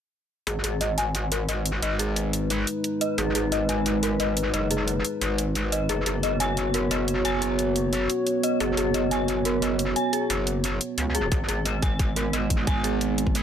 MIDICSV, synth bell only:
0, 0, Header, 1, 2, 480
1, 0, Start_track
1, 0, Key_signature, 5, "minor"
1, 0, Tempo, 338983
1, 664, Time_signature, 4, 2, 24, 8
1, 19014, End_track
2, 0, Start_track
2, 0, Title_t, "Synth bell"
2, 0, Program_c, 0, 98
2, 664, Note_on_c, 0, 68, 74
2, 729, Note_off_c, 0, 68, 0
2, 904, Note_on_c, 0, 68, 75
2, 1065, Note_off_c, 0, 68, 0
2, 1144, Note_on_c, 0, 75, 71
2, 1251, Note_off_c, 0, 75, 0
2, 1384, Note_on_c, 0, 80, 97
2, 1491, Note_off_c, 0, 80, 0
2, 1863, Note_on_c, 0, 70, 69
2, 2025, Note_off_c, 0, 70, 0
2, 2104, Note_on_c, 0, 75, 71
2, 2211, Note_off_c, 0, 75, 0
2, 2583, Note_on_c, 0, 75, 94
2, 2745, Note_off_c, 0, 75, 0
2, 2824, Note_on_c, 0, 68, 77
2, 2985, Note_off_c, 0, 68, 0
2, 4264, Note_on_c, 0, 75, 73
2, 4371, Note_off_c, 0, 75, 0
2, 4504, Note_on_c, 0, 68, 76
2, 4568, Note_off_c, 0, 68, 0
2, 4744, Note_on_c, 0, 68, 75
2, 4905, Note_off_c, 0, 68, 0
2, 4984, Note_on_c, 0, 75, 73
2, 5092, Note_off_c, 0, 75, 0
2, 5225, Note_on_c, 0, 80, 97
2, 5332, Note_off_c, 0, 80, 0
2, 5704, Note_on_c, 0, 70, 70
2, 5865, Note_off_c, 0, 70, 0
2, 5944, Note_on_c, 0, 75, 71
2, 6052, Note_off_c, 0, 75, 0
2, 6424, Note_on_c, 0, 75, 96
2, 6585, Note_off_c, 0, 75, 0
2, 6665, Note_on_c, 0, 68, 75
2, 6825, Note_off_c, 0, 68, 0
2, 8104, Note_on_c, 0, 75, 74
2, 8212, Note_off_c, 0, 75, 0
2, 8344, Note_on_c, 0, 68, 76
2, 8408, Note_off_c, 0, 68, 0
2, 8584, Note_on_c, 0, 68, 76
2, 8745, Note_off_c, 0, 68, 0
2, 8825, Note_on_c, 0, 75, 71
2, 8932, Note_off_c, 0, 75, 0
2, 9064, Note_on_c, 0, 80, 100
2, 9172, Note_off_c, 0, 80, 0
2, 9544, Note_on_c, 0, 70, 72
2, 9705, Note_off_c, 0, 70, 0
2, 9784, Note_on_c, 0, 75, 73
2, 9892, Note_off_c, 0, 75, 0
2, 10265, Note_on_c, 0, 80, 95
2, 10425, Note_off_c, 0, 80, 0
2, 10504, Note_on_c, 0, 68, 75
2, 10665, Note_off_c, 0, 68, 0
2, 11944, Note_on_c, 0, 75, 75
2, 12051, Note_off_c, 0, 75, 0
2, 12184, Note_on_c, 0, 68, 77
2, 12248, Note_off_c, 0, 68, 0
2, 12424, Note_on_c, 0, 68, 77
2, 12585, Note_off_c, 0, 68, 0
2, 12664, Note_on_c, 0, 75, 71
2, 12771, Note_off_c, 0, 75, 0
2, 12904, Note_on_c, 0, 80, 98
2, 13012, Note_off_c, 0, 80, 0
2, 13384, Note_on_c, 0, 70, 72
2, 13545, Note_off_c, 0, 70, 0
2, 13624, Note_on_c, 0, 75, 72
2, 13731, Note_off_c, 0, 75, 0
2, 14104, Note_on_c, 0, 80, 94
2, 14265, Note_off_c, 0, 80, 0
2, 14344, Note_on_c, 0, 68, 76
2, 14505, Note_off_c, 0, 68, 0
2, 15784, Note_on_c, 0, 68, 97
2, 15891, Note_off_c, 0, 68, 0
2, 16024, Note_on_c, 0, 68, 81
2, 16088, Note_off_c, 0, 68, 0
2, 16264, Note_on_c, 0, 68, 75
2, 16425, Note_off_c, 0, 68, 0
2, 16503, Note_on_c, 0, 75, 73
2, 16611, Note_off_c, 0, 75, 0
2, 16743, Note_on_c, 0, 80, 101
2, 16851, Note_off_c, 0, 80, 0
2, 17224, Note_on_c, 0, 70, 70
2, 17385, Note_off_c, 0, 70, 0
2, 17463, Note_on_c, 0, 75, 75
2, 17571, Note_off_c, 0, 75, 0
2, 17943, Note_on_c, 0, 80, 95
2, 18105, Note_off_c, 0, 80, 0
2, 18183, Note_on_c, 0, 68, 75
2, 18345, Note_off_c, 0, 68, 0
2, 19014, End_track
0, 0, End_of_file